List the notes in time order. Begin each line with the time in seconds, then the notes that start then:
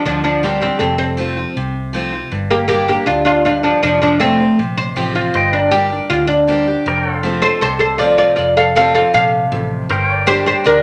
0.05 D2 D3 F3 D4
0.24 F3 D4
0.43 G3 A#3 C4 D4 G4
0.61 G3 C4 D4 G4
0.79 F1 F2 A3 C4
0.98 C4
1.17 F3 A3 C4 F4
1.37 C4 F4
1.56 C2 C3
1.93 F3 A3 C4 F4
2.13 C4 F4
2.32 G1 G2
2.51 A#3 G4
2.68 G3 A#3 D4 G4
2.88 A#3 D4 G4
3.06 D2 A2 D4 F4
3.25 D4 F4
3.45 G2 D4 F4
3.63 F3 D4
3.83 F1 F2 F3 D4
4.02 F3 D4
4.20 F3 A3 C4 F4
4.40 C4 F4
4.59 A#1 C3
4.78 C5
4.96 A1 F3 A3 C4 F4 G4
5.15 F4
5.34 G1 G2 C5 D#5 G5
5.53 D4 D5
5.60 A#4
5.71 G3 A#3 D4 G4 A#4
5.90 D4 G4
6.10 D2 D3 F4
6.27 D4
6.47 G3 A#3 D4 G4 C5
6.67 D4 G4
6.86 F1 F2 A#4 D5 G5
7.08 A4
7.13 C5 F5
7.23 F3 A3 C4 F4 A4
7.42 C4 F4 A4 C5
7.61 C2 C3 A4 C5
7.79 A4 C5
7.98 F3 A3 C4 F4 C5 D5
8.02 F4
8.18 F4 D5
8.36 F1 F2 F4 D5
8.57 A4 F5
8.75 F3 A3 C4 F4 G4 A4 F5
8.95 C4 F4 A4 F5
9.14 A#1 C3 F5
9.51 A1 F2 C4 F4 A4
9.89 G1 G2 A#4 C5 G5
10.16 D5
10.26 G3 A#3 D4 G4 A#4 C5
10.46 G4 C5
10.64 D2 D3 D4 A#4